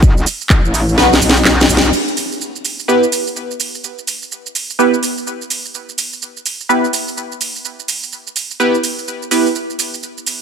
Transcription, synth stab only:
0.98 1.14 B3 medium
0.98 1.14 D#4 medium
0.98 1.14 F#4 medium
0.98 1.14 B4 loud
2.88 3.05 B3 medium
2.88 3.05 E4 medium
2.88 3.05 G4 medium
2.88 3.05 B4 loud
4.79 4.95 B3 medium
4.79 4.95 E4 medium
4.79 4.95 G4 medium
4.79 4.95 B4 loud
6.69 6.86 B3 medium
6.69 6.86 E4 medium
6.69 6.86 G4 medium
6.69 6.86 B4 loud
8.60 8.76 B3 medium
8.60 8.76 E4 medium
8.60 8.76 G4 medium
8.60 8.76 B4 loud
9.31 9.48 B3 medium
9.31 9.47 E4 medium
9.31 9.47 G4 medium
9.31 9.47 B4 medium

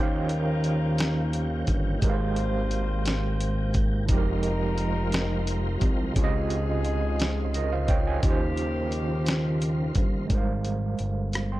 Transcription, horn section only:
0.00 1.64 G3 medium
0.00 1.65 F4 medium
0.00 1.65 A#4 medium
2.02 3.71 G3 medium
2.02 3.71 F4 medium
2.02 3.71 C5 medium
4.09 5.78 G3 medium
4.09 5.78 D#4 medium
4.09 5.78 A#4 medium
6.16 7.85 F3 medium
6.16 7.85 D#4 medium
6.16 7.85 G#4 medium
8.22 9.92 C#3 medium
8.22 9.92 C4 medium
8.22 9.92 G4 medium

